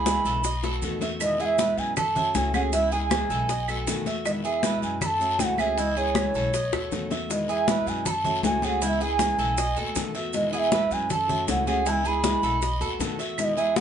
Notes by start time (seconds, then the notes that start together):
Already playing: C#2 G#4 B5
0.05 C#3 E3 G#3 B3 E4, high bongo, high conga, short guiro, maracas
0.25 B1 A4, high bongo, high conga, short guiro, maracas
0.43 D#5, muted nylon-string guitar stroke, high bongo, high conga, long guiro, maracas
0.63 A3 B3 F#4 A4, high bongo, high conga, maracas
0.82 E2 B2 D#3 A3 B3 F#4, high conga, short guiro, maracas
1.00 A3 B3 F#4 E5, low bongo, high conga, short guiro, maracas
1.19 B2 D#3 G#3 B3 E4 D#5, high bongo, high conga, long guiro, claves, maracas
1.39 G#3 B3 E4 G#4 F#5, high conga, maracas
1.45 E5
1.58 B2 G#3 B3 E4 B4, high bongo, high conga, short guiro, maracas
1.77 F#2 G#5, high conga, short guiro, maracas
1.96 A4 A5, muted nylon-string guitar stroke, high bongo, high conga, low conga, long guiro, claves, maracas
2.15 A3 C#4 F#4 E5, high conga, low conga, maracas
2.34 C#2 C#3 E3 A3 C#4 F#4 G#5, high bongo, low bongo, high conga, short guiro, maracas
2.54 A3 C#4 F#4 G#4 F#5, high conga, short guiro, claves, maracas
2.73 C#3 E3 G#3 B3 E4 E5, high bongo, high conga, long guiro, maracas
2.92 G#3 B3 E4 G#4 G#5, high bongo, high conga, maracas
3.11 C#3 E3 G#3 B3 E4, high bongo, high conga, short guiro, claves, maracas
3.30 B1 A4, high bongo, high conga, short guiro, maracas
3.49 D#5, muted nylon-string guitar stroke, high bongo, high conga, long guiro, maracas
3.68 A3 B3 F#4 A4, high conga, claves, maracas
3.87 E2 B2 D#3 A3 B3 F#4, high bongo, low bongo, high conga, short guiro, maracas
4.06 A3 B3 F#4 E5, high bongo, high conga, short guiro, maracas
4.25 B2 D#3 G#3 B3 E4 D#5, high bongo, high conga, long guiro, claves, maracas
4.44 G#3 B3 E4 G#4 E5, high conga, maracas
4.62 B2 G#3 B3 E4 B4, high bongo, high conga, short guiro, maracas
4.82 F#2 G#5, high conga, short guiro, maracas
5.01 A4 B5, muted nylon-string guitar stroke, high bongo, high conga, low conga, long guiro, claves, maracas
5.06 A5
5.19 A3 C#4 F#4 E5, high conga, maracas
5.39 C#2 C#3 E3 A3 C#4 F#4 G5, high bongo, low bongo, high conga, short guiro, maracas
5.45 F#5
5.58 A3 C#4 G#4 E5, high conga, short guiro, claves, maracas
5.77 C#3 E3 G#3 B3 E4 D#5, high bongo, high conga, long guiro, maracas
5.96 G#3 B3 E4 G#4 C#5, high bongo, high conga, maracas
6.15 C#3 E3 G#3 B3 E4, high bongo, high conga, short guiro, claves, maracas
6.34 B1 A4, high bongo, high conga, short guiro, maracas
6.54 D#5, high bongo, high conga, long guiro, maracas
6.72 D#2 A3 B3 F#4 A4, high bongo, high conga, claves, maracas
6.91 E2 B2 D#3 A3 B3 F#4, low bongo, high conga, short guiro, maracas
7.10 A3 B3 F#4 E5, low bongo, high conga, short guiro, maracas
7.29 B2 D#3 G#3 B3 E4 D#5, high bongo, high conga, long guiro, maracas
7.48 G#3 B3 E4 G#4 E5, high conga, maracas
7.67 B2 G#3 B3 E4 B4, high bongo, high conga, short guiro, maracas
7.86 F#2 G#5, high conga, short guiro, maracas
8.05 A4 B5, muted nylon-string guitar stroke, high bongo, high conga, low conga, long guiro, maracas
8.10 A5
8.24 A3 C#4 F#4 E5, high conga, low conga, maracas
8.43 C#2 C#3 E3 A3 C#4 F#4 G#5, high bongo, low bongo, high conga, short guiro, maracas
8.62 A3 C#4 F#4 G#4 G5, high conga, short guiro, maracas
8.69 F#5
8.81 C#3 E3 G#3 B3 E4 F#5, high bongo, high conga, long guiro, maracas
8.88 E5
9.00 G#3 B3 E4 G#4 G#5, high bongo, high conga, maracas
9.19 C#3 E3 G#3 B3 E4, high bongo, high conga, short guiro, maracas
9.38 B1 A4, high bongo, high conga, short guiro, maracas
9.58 D#5, muted nylon-string guitar stroke, high bongo, high conga, long guiro, maracas
9.76 D#2 A3 B3 F#4 A4, high conga, maracas
9.95 E2 B2 D#3 A3 B3 F#4, high bongo, low bongo, high conga, short guiro, maracas
10.14 A3 B3 F#4 E5, high bongo, short guiro, maracas
10.33 B2 D#3 G#3 B3 E4 D#5, high bongo, high conga, long guiro, maracas
10.52 G#3 B3 E4 G#4 F#5, high conga, maracas
10.58 E5
10.71 B2 G#3 B3 E4 B4, high bongo, high conga, short guiro, maracas
10.91 F#2 G#5, high conga, short guiro, maracas
11.09 A4 A5, muted nylon-string guitar stroke, high bongo, high conga, low conga, long guiro, maracas
11.28 A3 C#4 F#4 E5, high conga, low conga, maracas
11.47 C#2 C#3 E3 A3 C#4 F#4 F#5, high bongo, low bongo, high conga, short guiro, maracas
11.66 A3 C#4 F#4 G#4 F#5, high conga, short guiro, maracas
11.85 C#3 E3 G#3 B3 E4 A5, high bongo, high conga, long guiro, maracas
11.91 G#5
12.04 G#3 B3 E4 G#4 B5, high bongo, high conga, maracas
12.23 C#3 E3 G#3 B3 E4, high bongo, high conga, short guiro, maracas
12.43 B1 A4, high bongo, high conga, short guiro, maracas
12.62 D#5, high bongo, high conga, long guiro, maracas
12.80 D#2 A3 B3 F#4 A4, high conga, maracas
12.99 E2 B2 D#3 A3 B3 F#4, high bongo, low bongo, high conga, short guiro, maracas
13.18 A3 B3 F#4 E5, high bongo, short guiro, maracas
13.37 B2 D#3 G#3 B3 E4 E5, high bongo, high conga, long guiro, claves, maracas
13.44 D#5
13.56 G#3 B3 E4 G#4 E5, high conga, maracas
13.75 B2 G#3 B3 E4 B4 F#5, high bongo, high conga, short guiro, maracas